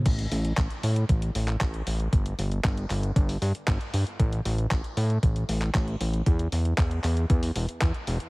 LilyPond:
<<
  \new Staff \with { instrumentName = "Analog synth bass" } { \clef bass \time 4/4 \key a \dorian \tempo 4 = 116 a,,8 a,,8 a,,8 a,8 a,,8 a,,8 a,,8 a,,8 | g,,8 g,,8 g,,8 g,,8 g,,8 g,8 g,,8 g,8 | a,,8 a,,8 a,,8 a,8 a,,8 a,,8 a,,8 a,,8 | e,8 e,8 e,8 e,8 e,8 e,,8 e,8 e,,8 | }
  \new DrumStaff \with { instrumentName = "Drums" } \drummode { \time 4/4 <cymc hh bd>16 hh16 hho16 hh16 <hc hh bd>16 hh16 hho16 hh16 <hh bd>16 hh16 hho16 <hc hh>16 <hc hh bd>16 hh16 hho16 hh16 | <hh bd>16 hh16 hho16 hh16 <hc hh bd>16 hh16 <hc hho>16 hh16 <hh bd>16 hho16 hho16 hh16 <hc hh bd>16 hh16 hho16 hh16 | <hh bd>16 hh16 hho16 hh16 <hc hh bd>16 hh16 hho16 hh16 <hh bd>16 hh16 hho16 <hc hh>16 <hc hh bd>16 hh16 hho16 hh16 | <hh bd>16 hh16 hho16 hh16 <hc hh bd>16 hh16 <hc hho>16 hh16 <hh bd>16 hho16 hho16 hh16 <hc hh bd>16 hh16 hho16 hh16 | }
>>